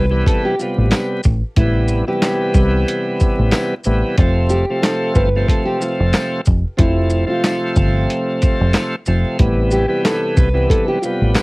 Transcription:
0.00 0.22 C2 medium
0.00 0.23 B4 medium
0.10 0.55 C3 medium
0.10 0.55 E3 medium
0.10 0.55 G3 medium
0.10 0.56 B3 loud
0.26 0.43 A4 medium
0.26 kick loud
0.26 closed hi-hat medium
0.45 0.58 G4 medium
0.59 1.21 C3 medium
0.59 1.21 G3 medium
0.59 1.21 B3 medium
0.59 0.88 F4 medium
0.59 shaker medium
0.78 0.90 A1 medium
0.91 snare loud
0.91 clap medium
0.91 closed hi-hat medium
0.91 tambourine medium
1.23 1.41 A1 medium
1.23 kick medium
1.23 shaker soft
1.57 2.02 A1 loud
1.57 2.04 C3 medium
1.57 2.04 E3 medium
1.57 2.05 G3 medium
1.57 2.05 B3 loud
1.57 2.05 E4 loud
1.57 kick loud
1.57 closed hi-hat loud
1.88 shaker medium
2.07 2.21 C3 medium
2.07 2.22 E3 medium
2.07 2.23 G3 medium
2.07 2.23 B3 loud
2.07 3.02 G4 medium
2.22 3.74 C3 medium
2.22 3.74 E3 medium
2.22 3.74 G3 medium
2.22 3.75 B3 loud
2.22 snare loud
2.22 clap medium
2.22 closed hi-hat medium
2.22 tambourine medium
2.54 2.83 C2 loud
2.54 kick loud
2.54 shaker medium
2.88 closed hi-hat medium
3.20 kick loud
3.20 shaker medium
3.39 3.51 A1 loud
3.52 snare loud
3.52 clap medium
3.52 closed hi-hat medium
3.52 tambourine medium
3.84 4.02 A1 loud
3.84 4.16 C3 medium
3.84 4.16 E3 medium
3.84 4.16 G3 medium
3.84 4.17 B3 medium
3.84 shaker soft
4.18 4.62 F1 loud
4.18 4.65 C3 loud
4.18 4.65 F3 loud
4.18 4.65 A3 medium
4.18 4.65 C4 loud
4.18 kick loud
4.18 closed hi-hat loud
4.49 4.80 G4 medium
4.49 shaker medium
4.70 5.29 C3 loud
4.70 5.29 F3 medium
4.70 5.29 A3 medium
4.70 5.29 C4 loud
4.82 5.12 A4 medium
4.82 snare loud
4.82 clap medium
4.82 closed hi-hat medium
4.82 tambourine medium
5.15 5.44 G1 loud
5.15 5.45 B4 medium
5.15 kick loud
5.15 shaker medium
5.36 5.78 C3 medium
5.36 5.78 F3 medium
5.36 5.79 A3 medium
5.36 5.79 C4 loud
5.48 5.65 A4 loud
5.48 kick loud
5.48 closed hi-hat loud
5.65 5.79 G4 medium
5.79 6.41 C3 medium
5.79 6.41 F3 medium
5.79 6.41 A3 medium
5.79 6.41 C4 loud
5.79 6.11 F4 medium
5.79 shaker medium
6.00 6.12 F1 medium
6.13 snare loud
6.13 clap medium
6.13 closed hi-hat medium
6.13 tambourine medium
6.45 6.63 F1 loud
6.45 kick medium
6.45 shaker soft
6.77 7.23 F1 loud
6.77 7.24 C3 medium
6.77 7.25 F3 medium
6.77 7.25 A3 medium
6.77 7.25 C4 loud
6.77 7.26 E4 loud
6.77 kick loud
6.77 closed hi-hat loud
7.10 shaker medium
7.26 7.42 C3 loud
7.26 7.43 F3 medium
7.26 7.43 A3 medium
7.26 7.44 C4 loud
7.26 8.24 F4 medium
7.43 8.95 C3 loud
7.43 8.96 F3 medium
7.43 8.96 A3 medium
7.43 8.96 C4 loud
7.43 snare loud
7.43 clap medium
7.43 closed hi-hat medium
7.43 tambourine medium
7.76 8.05 G1 loud
7.76 kick loud
7.76 shaker medium
8.10 closed hi-hat loud
8.42 kick loud
8.42 closed hi-hat medium
8.42 shaker medium
8.61 8.73 F1 loud
8.73 snare loud
8.73 clap medium
8.73 closed hi-hat medium
8.73 tambourine medium
9.06 9.23 F1 loud
9.06 9.37 C3 medium
9.06 9.38 F3 medium
9.06 9.38 A3 medium
9.06 9.38 C4 medium
9.06 shaker soft
9.38 9.84 A1 loud
9.38 9.85 C3 loud
9.38 9.86 E3 medium
9.38 9.86 G3 medium
9.38 9.86 B3 loud
9.38 kick loud
9.38 closed hi-hat loud
9.71 10.02 G4 medium
9.71 shaker medium
9.88 10.49 C3 loud
9.88 10.49 E3 medium
9.88 10.49 G3 medium
9.88 10.49 B3 loud
10.05 10.34 A4 medium
10.05 snare loud
10.05 clap medium
10.05 closed hi-hat medium
10.05 tambourine medium
10.37 10.66 C2 medium
10.37 10.67 B4 medium
10.37 kick loud
10.37 shaker medium
10.54 10.98 C3 loud
10.54 10.99 E3 medium
10.54 10.99 G3 medium
10.54 10.99 B3 loud
10.70 10.86 A4 medium
10.70 kick medium
10.70 closed hi-hat medium
10.88 11.01 G4 medium
11.02 11.43 C3 medium
11.02 11.43 G3 medium
11.02 11.32 F4 medium
11.02 shaker medium
11.06 11.43 B3 medium
11.22 11.34 A1 medium
11.34 snare loud
11.34 clap medium
11.34 closed hi-hat medium
11.34 tambourine medium

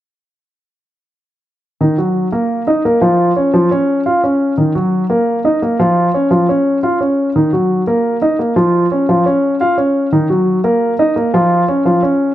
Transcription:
1.81 1.95 D#3 medium
1.81 1.95 D#4 medium
1.98 2.26 F#3 medium
1.98 2.27 F#4 medium
2.32 2.61 A#3 medium
2.32 2.61 A#4 medium
2.67 2.81 D#4 medium
2.67 2.82 D#5 medium
2.85 2.99 A#3 medium
2.85 2.99 A#4 medium
3.01 3.30 F3 medium
3.01 3.30 F4 medium
3.36 3.50 C#4 medium
3.36 3.51 C#5 medium
3.54 3.68 F3 medium
3.54 3.68 F4 medium
3.71 4.00 C#4 medium
3.71 4.00 C#5 medium
4.06 4.20 F4 medium
4.06 4.20 F5 medium
4.23 4.52 C#4 medium
4.23 4.52 C#5 medium
4.58 4.72 D#3 medium
4.58 4.72 D#4 medium
4.75 5.04 F#3 medium
4.75 5.04 F#4 medium
5.10 5.38 A#3 medium
5.10 5.38 A#4 medium
5.45 5.59 D#4 medium
5.45 5.59 D#5 medium
5.62 5.76 A#3 medium
5.62 5.77 A#4 medium
5.79 6.08 F3 medium
5.79 6.08 F4 medium
6.14 6.28 C#4 medium
6.14 6.28 C#5 medium
6.31 6.45 F3 medium
6.31 6.45 F4 medium
6.49 6.77 C#4 medium
6.49 6.77 C#5 medium
6.83 6.97 F4 medium
6.83 6.97 F5 medium
7.00 7.29 C#4 medium
7.00 7.29 C#5 medium
7.36 7.50 D#3 medium
7.36 7.50 D#4 medium
7.53 7.81 F#3 medium
7.53 7.81 F#4 medium
7.87 8.16 A#3 medium
7.87 8.16 A#4 medium
8.22 8.36 D#4 medium
8.22 8.36 D#5 medium
8.39 8.53 A#3 medium
8.39 8.53 A#4 medium
8.56 8.85 F3 medium
8.56 8.85 F4 medium
8.91 9.05 C#4 medium
8.91 9.06 C#5 medium
9.09 9.23 F3 medium
9.09 9.23 F4 medium
9.26 9.54 C#4 medium
9.26 9.54 C#5 medium
9.60 9.74 F4 medium
9.60 9.75 F5 medium
9.77 10.06 C#4 medium
9.77 10.06 C#5 medium
10.12 10.26 D#3 medium
10.12 10.27 D#4 medium
10.30 10.58 F#3 medium
10.30 10.58 F#4 medium
10.64 10.92 A#3 medium
10.64 10.93 A#4 medium
10.99 11.13 D#4 medium
10.99 11.13 D#5 medium
11.16 11.30 A#3 medium
11.16 11.30 A#4 medium
11.34 11.62 F3 medium
11.34 11.62 F4 medium
11.68 11.82 C#4 medium
11.68 11.82 C#5 medium
11.85 11.99 F3 medium
11.85 12.00 F4 medium
12.03 12.31 C#4 medium
12.03 12.31 C#5 medium

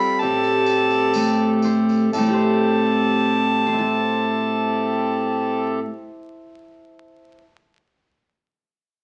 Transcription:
0.00 0.21 G3 medium
0.00 2.09 C4 medium
0.00 0.16 F4 medium
0.00 0.16 A4 medium
0.00 1.64 A4 medium
0.00 0.19 F5 medium
0.00 0.22 B5 loud
0.20 2.12 A2 medium
0.20 2.11 G4 medium
0.20 2.08 G4 medium
0.20 2.11 A4 medium
0.20 2.11 E5 medium
0.20 1.63 A5 loud
0.20 tambourine soft
0.43 tambourine soft
0.66 tambourine medium
0.90 tambourine soft
1.14 2.07 A3 medium
1.14 tambourine loud
1.62 2.07 C5 medium
1.62 tambourine medium
1.89 tambourine soft
2.12 5.84 A2 medium
2.12 5.79 C4 medium
2.12 5.79 G4 medium
2.12 5.80 A4 medium
2.12 5.80 E5 medium
2.12 5.81 A5 medium
2.12 tambourine medium
2.18 5.89 A3 medium
2.23 3.66 C4 medium
2.28 3.72 G4 medium
2.33 3.67 C5 medium
3.67 7.38 C5 medium
3.73 7.44 E5 medium
3.79 7.50 A5 medium

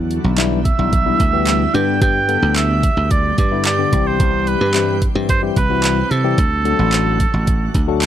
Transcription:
0.00 0.18 E2 loud
0.00 3.89 D3 medium
0.00 1.73 G3 medium
0.00 3.89 B3 medium
0.00 1.72 E4 medium
0.11 closed hi-hat medium
0.24 0.70 B1 medium
0.38 0.59 E3 medium
0.38 0.59 G3 medium
0.38 0.60 B3 medium
0.38 0.60 D4 medium
0.38 0.60 E4 loud
0.38 clap loud
0.38 clap medium
0.38 closed hi-hat medium
0.65 1.76 E5 loud
0.65 kick medium
0.65 closed hi-hat medium
0.78 1.13 B1 loud
0.78 0.93 E3 medium
0.78 0.93 G3 medium
0.78 0.93 B3 medium
0.78 0.93 D4 medium
0.78 0.93 E4 medium
0.93 kick loud
0.93 closed hi-hat loud
1.06 1.20 E3 medium
1.06 1.20 G3 medium
1.06 1.20 B3 medium
1.06 1.20 D4 medium
1.06 1.21 E4 medium
1.20 1.66 D2 medium
1.20 kick loud
1.20 closed hi-hat medium
1.33 1.62 E3 medium
1.33 1.62 G3 medium
1.33 1.62 B3 medium
1.33 1.62 D4 medium
1.33 1.62 G4 loud
1.47 clap loud
1.47 closed hi-hat medium
1.74 1.97 G2 medium
1.74 2.18 D3 medium
1.74 2.18 G3 medium
1.74 6.34 G3 medium
1.74 2.18 B3 medium
1.74 2.18 D4 medium
1.74 2.18 G4 medium
1.74 6.34 G4 loud
1.74 2.01 G5 loud
1.74 closed hi-hat medium
2.02 2.36 G2 loud
2.02 2.58 G5 loud
2.02 kick loud
2.02 closed hi-hat medium
2.28 2.86 D3 medium
2.28 2.86 G3 medium
2.28 2.86 B3 medium
2.28 2.86 D4 medium
2.28 2.86 A4 medium
2.28 closed hi-hat medium
2.42 2.88 D2 medium
2.56 3.12 E5 loud
2.56 clap medium
2.56 clap loud
2.56 closed hi-hat medium
2.83 kick loud
2.83 closed hi-hat medium
2.97 3.31 D2 loud
3.11 3.37 D5 loud
3.11 kick loud
3.11 closed hi-hat loud
3.38 3.84 G2 medium
3.38 3.63 D5 medium
3.38 kick loud
3.38 closed hi-hat medium
3.51 3.66 D3 medium
3.51 3.66 G3 medium
3.51 3.66 B3 medium
3.51 3.66 D4 medium
3.51 3.66 E4 loud
3.65 4.08 D5 loud
3.65 clap medium
3.65 clap loud
3.65 closed hi-hat medium
3.79 3.92 D3 medium
3.79 3.91 G3 medium
3.79 3.93 B3 medium
3.79 3.93 D4 medium
3.79 3.92 G4 medium
3.92 4.16 C2 medium
3.92 4.58 E3 medium
3.92 6.36 E3 medium
3.92 4.58 G3 medium
3.92 4.58 C4 medium
3.92 6.36 C4 medium
3.92 4.58 E4 medium
3.92 4.58 G4 medium
3.92 kick loud
3.92 closed hi-hat medium
4.07 4.49 C5 loud
4.20 4.54 C2 loud
4.20 kick loud
4.20 closed hi-hat medium
4.47 5.02 B4 medium
4.47 closed hi-hat medium
4.61 5.07 G2 medium
4.74 4.96 E3 medium
4.74 4.96 G3 medium
4.74 4.96 C4 medium
4.74 4.96 E4 medium
4.74 4.96 G4 medium
4.74 clap loud
4.74 clap medium
4.74 closed hi-hat medium
5.02 kick medium
5.02 closed hi-hat medium
5.15 5.50 G2 loud
5.15 5.29 E3 medium
5.15 5.30 G3 medium
5.15 5.30 C4 medium
5.15 5.30 E4 medium
5.15 5.30 G4 medium
5.29 5.42 C5 loud
5.29 kick loud
5.29 closed hi-hat loud
5.42 5.57 E3 medium
5.42 5.57 G3 medium
5.42 5.57 C4 medium
5.42 5.57 E4 medium
5.42 5.57 G4 loud
5.56 6.02 C2 medium
5.56 6.12 B4 loud
5.56 kick loud
5.56 closed hi-hat medium
5.70 5.99 E3 medium
5.70 5.99 G3 medium
5.70 5.99 C4 medium
5.70 5.99 E4 medium
5.70 5.99 F#4 medium
5.83 clap loud
5.83 closed hi-hat medium
6.11 6.34 C3 medium
6.11 8.02 A4 loud
6.11 closed hi-hat medium
6.24 6.38 E3 medium
6.24 6.38 G3 medium
6.24 6.38 C4 medium
6.24 6.38 E4 medium
6.24 6.38 G4 loud
6.38 6.72 D2 loud
6.38 8.06 D3 medium
6.38 8.06 F#3 medium
6.38 8.06 A3 medium
6.38 8.06 F#4 medium
6.38 kick loud
6.38 closed hi-hat medium
6.65 7.23 F#3 medium
6.65 7.23 A3 medium
6.65 7.23 D4 medium
6.65 7.23 F#4 medium
6.65 7.23 A4 medium
6.65 closed hi-hat medium
6.79 7.25 A1 medium
6.92 clap loud
6.92 clap medium
6.92 closed hi-hat medium
7.20 kick medium
7.20 closed hi-hat medium
7.34 7.68 A1 loud
7.47 kick loud
7.47 closed hi-hat loud
7.74 8.06 D2 medium
7.74 kick loud
7.74 closed hi-hat medium
7.88 8.02 F#3 loud
7.88 8.02 A3 medium
7.88 8.02 D4 medium
7.88 8.02 F#4 loud
7.88 8.02 A4 loud
8.01 8.06 A5 medium
8.01 clap loud
8.01 closed hi-hat medium

